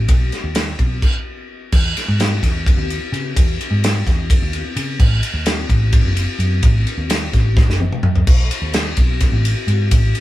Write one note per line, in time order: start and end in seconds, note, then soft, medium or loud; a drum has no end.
0.08 0.29 B1 medium
0.08 kick loud
0.08 ride loud
0.32 snare soft
0.32 ride medium
0.44 0.74 D#2 medium
0.55 snare loud
0.55 ride loud
0.79 0.99 B1 medium
0.79 kick medium
0.79 ride medium
1.02 kick loud
1.02 crash loud
1.72 1.93 E2 medium
1.72 kick loud
1.72 crash loud
1.97 snare soft
1.97 ride medium
2.08 2.39 G#2 medium
2.20 snare loud
2.20 ride loud
2.43 2.73 E2 loud
2.43 kick medium
2.43 snare soft
2.43 ride medium
2.66 kick loud
2.66 ride loud
2.77 2.98 D#2 loud
2.90 ride medium
3.12 3.33 C#3 loud
3.12 ride medium
3.36 3.57 E2 loud
3.36 kick loud
3.36 ride loud
3.61 ride medium
3.71 4.02 G#2 medium
3.84 snare loud
3.84 ride loud
4.06 4.37 E2 loud
4.06 kick medium
4.06 snare soft
4.06 ride medium
4.30 kick loud
4.30 ride loud
4.42 4.62 D#2 medium
4.53 ride medium
4.76 4.97 C#3 medium
4.76 ride medium
4.99 5.20 A1 loud
4.99 kick loud
4.99 crash loud
5.23 ride medium
5.34 5.65 D#2 medium
5.46 snare loud
5.46 ride loud
5.69 6.00 A1 loud
5.69 kick medium
5.69 ride medium
5.93 kick loud
5.93 ride loud
6.05 6.25 F#1 medium
6.17 ride medium
6.39 6.60 F#2 medium
6.39 ride medium
6.62 6.83 A1 loud
6.62 kick loud
6.62 ride loud
6.87 ride medium
6.98 7.29 D#2 medium
7.10 snare loud
7.10 ride loud
7.33 7.64 A1 loud
7.33 kick medium
7.33 snare soft
7.33 ride medium
7.57 kick loud
7.57 snare medium
7.68 7.89 F#1 medium
7.68 snare medium
7.80 high tom medium
7.92 mid tom medium
8.03 8.24 F#2 medium
8.03 mid tom loud
8.16 floor tom medium
8.27 8.48 B1 medium
8.27 kick loud
8.27 crash loud
8.51 ride medium
8.62 8.93 D#2 medium
8.74 snare loud
8.74 ride loud
8.97 9.28 B1 loud
8.97 kick medium
8.97 ride medium
9.20 kick loud
9.20 snare soft
9.20 ride loud
9.32 9.53 A1 medium
9.45 ride medium
9.67 9.88 G#2 loud
9.67 ride medium
9.91 10.12 A1 loud
9.91 kick loud
9.91 ride loud
10.15 ride medium